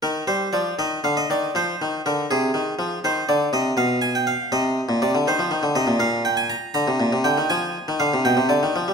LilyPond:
<<
  \new Staff \with { instrumentName = "Harpsichord" } { \time 6/8 \key c \minor \tempo 4. = 81 bes'8 c''8 d''8 ees''8 f''16 ees''16 d''8 | c''4 bes'8 aes'4. | c''8 d''8 ees''8 f''8 aes''16 g''16 f''8 | ees''4 d''8 c''4 ees''8 |
f''8 g''16 aes''16 bes''8 bes''4 g''8 | aes''4 f''8 g''8 d''8 r8 | }
  \new Staff \with { instrumentName = "Harpsichord" } { \clef bass \time 6/8 \key c \minor ees8 g8 f8 ees8 d8 ees8 | f8 ees8 d8 c8 ees8 f8 | ees8 d8 c8 b,4. | c8. bes,16 c16 d16 ees16 f16 ees16 d16 c16 bes,16 |
bes,4. d16 c16 bes,16 c16 d16 ees16 | f8. ees16 d16 c16 b,16 c16 d16 ees16 f16 g16 | }
>>